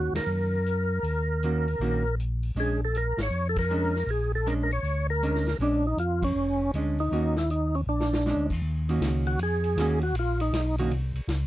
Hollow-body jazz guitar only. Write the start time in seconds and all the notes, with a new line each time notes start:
Already playing: D#3 A#3 C#4 F#4
1.43 D#3 A#3 C#4 F#4
1.81 D#3 A#3 C#4 F#4
2.56 G#3 C#4 D4
3.71 G#3 C#4 D4
4.47 G#3 C#4 D4
5.23 G#3 C#4 D4
5.61 G#3 C#4 D4
6.75 G#3 C#4 D4
7.12 D#3 A#3 C#4 F#4
8.26 G#3 C#4 D4
8.89 D#3 A#3 C#4 F#4
9.79 D#3 A#3 C#4 F#4
10.79 D#3 A#3 C#4 F#4